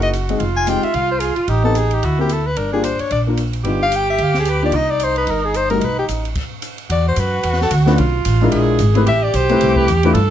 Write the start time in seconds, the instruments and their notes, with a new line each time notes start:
Already playing: upright bass F#1, grand piano A#3 D#4 E4 G#4, alto saxophone F#4
0.02 soprano saxophone D#5, ride
0.13 hi-hat pedal, ride
0.29 grand piano G#3 C4 D#4 G#4, ride
0.39 upright bass F1, alto saxophone F4, ride
0.57 soprano saxophone G#5
0.67 grand piano G#3 C4 D#4 G4, soprano saxophone G5, hi-hat pedal, ride
0.83 soprano saxophone E5, ride
0.94 upright bass C2, soprano saxophone F5, ride
1.11 soprano saxophone C5
1.20 soprano saxophone G#4, hi-hat pedal, ride
1.36 soprano saxophone F4, muted upright bass stroke, ride
1.48 upright bass A1, alto saxophone D#4, soprano saxophone G4, ride
1.64 grand piano B3 C4 D#4 G4, soprano saxophone A4
1.75 soprano saxophone G#4, hi-hat pedal, ride
1.91 soprano saxophone G4, ride
2.03 upright bass D2, alto saxophone E4, soprano saxophone F#4, ride
2.18 grand piano A#3 C4 F#4 A#4, soprano saxophone G4
2.29 hi-hat pedal, ride
2.33 soprano saxophone A4
2.47 soprano saxophone B4
2.56 upright bass G1, alto saxophone D4, soprano saxophone A#4, ride
2.73 grand piano A#3 D4 F4 G4, soprano saxophone G#4
2.84 soprano saxophone C5, hi-hat pedal, ride
2.99 soprano saxophone C#5, muted upright bass stroke, ride
3.11 upright bass A#1, soprano saxophone D5, ride
3.27 grand piano A#3 D4 F4 A#4
3.37 hi-hat pedal, ride
3.53 ride
3.64 upright bass G1, grand piano B3 D4 D#4 F4, alto saxophone G4, ride
3.83 soprano saxophone F5
3.92 hi-hat pedal, ride
3.96 soprano saxophone G5
4.10 soprano saxophone E5
4.18 upright bass D2, ride
4.24 soprano saxophone F5
4.34 snare
4.39 soprano saxophone G#4
4.45 hi-hat pedal, ride
4.49 soprano saxophone B4
4.62 grand piano A#3 D4 D#4 F4, soprano saxophone D5
4.72 upright bass C2, alto saxophone D#4, soprano saxophone D#5, ride
4.90 soprano saxophone D5
5.00 hi-hat pedal, ride
5.04 soprano saxophone C5
5.16 soprano saxophone B4, ride
5.27 upright bass G1, soprano saxophone A#4, ride
5.45 soprano saxophone G#4
5.54 soprano saxophone C5, hi-hat pedal, ride
5.70 grand piano G3 A3 D#4 F#4, soprano saxophone A#4, ride
5.80 upright bass B1, alto saxophone D#4, ride
5.85 soprano saxophone B4
5.99 soprano saxophone G4
6.08 upright bass A1, hi-hat pedal, ride
6.25 ride
6.35 kick, crash, ride
6.62 hi-hat pedal, ride
6.78 ride
6.90 upright bass E2, alto saxophone F#4, soprano saxophone D5, ride
7.08 soprano saxophone C5
7.16 upright bass F#2, soprano saxophone B4, hi-hat pedal, ride
7.43 upright bass E2, ride
7.53 snare
7.61 soprano saxophone A4, snare
7.71 upright bass D2, hi-hat pedal, ride
7.86 grand piano A3 C#4 D4 F4 B4, snare
7.98 upright bass B1, alto saxophone F4, ride
8.25 upright bass A1, hi-hat pedal, ride
8.41 grand piano G#3 D4 E4 F4 A#4
8.52 upright bass A#1, alto saxophone G#4, ride
8.79 upright bass G#1, hi-hat pedal, ride
8.95 grand piano A3 C4 E4 G4 B4, ride
9.06 upright bass A1, alto saxophone G4, soprano saxophone E5, ride
9.23 soprano saxophone D5
9.34 upright bass B1, soprano saxophone C5, hi-hat pedal, ride
9.49 grand piano A3 C4 E4 G4 B4, ride
9.61 upright bass C2, ride
9.76 soprano saxophone B4, kick
9.88 upright bass E2, hi-hat pedal, ride
10.03 grand piano A3 D4 E4 F4 B4, ride
10.14 upright bass G2, alto saxophone A4, ride